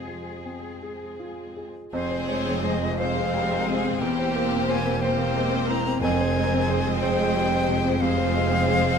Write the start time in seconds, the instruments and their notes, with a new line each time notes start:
Already playing: double bass section F2, grand piano C3 C4 F4 G#4 F5, viola section G#3, violin section C4 G#4, cello section G#4
0.08 grand piano F3
0.45 grand piano C4
0.83 grand piano G#4
1.19 grand piano F4
1.57 grand piano G#4
1.93 double bass section F1, grand piano F2, cello section F2, viola section G#3 C4, violin section G#4 C5, flute C5
2.11 grand piano C5
2.28 grand piano G#3, flute C#5
2.47 grand piano C4
2.63 french horn section G#3 C4, grand piano C5, flute D#5
2.82 grand piano G#3
2.98 viola section G#3 C4, violin section G#4 C5, grand piano C5, flute F5
3.16 grand piano G#3
3.34 grand piano G3, violin section A#4
3.51 grand piano G#3
3.67 grand piano C3, french horn section G#3 C4, violin section G#4
3.84 grand piano C4
3.99 double bass section E1, cello section E2, grand piano E2, viola section A#3 C4, violin section G4 C5, flute G5
4.19 grand piano C5
4.36 grand piano A#3
4.52 grand piano C4
4.68 french horn section A#3 C4, grand piano C5, flute G#5
4.86 grand piano A#3
5.01 viola section A#3 C4, violin section G4 C5, grand piano C5, flute G5
5.18 grand piano A#3
5.36 grand piano G#3
5.54 grand piano A#3
5.67 grand piano E3, french horn section A#3 C4, flute A#5
5.87 grand piano C4
6.01 double bass section F1, timpani F2, cello section F2, grand piano F2, viola section G#3 C4, violin section G#4 C5, flute G#5
6.21 grand piano C5
6.36 grand piano G#3, violin section A#4
6.54 grand piano C4
6.68 french horn section G#3 C4, violin section C5, grand piano C5
6.87 grand piano G#3
7.00 grand piano C5, flute G5
7.18 grand piano G#3
7.36 grand piano G3
7.51 grand piano G#3
7.68 grand piano C3, french horn section G#3 C4
7.84 grand piano C4
8.00 grand piano C3, viola section G#3 C4, violin section G#4 C5, flute F5
8.17 grand piano C5
8.34 grand piano G#3
8.51 grand piano C4
8.67 french horn section G#3 C4, grand piano C5
8.83 grand piano G#3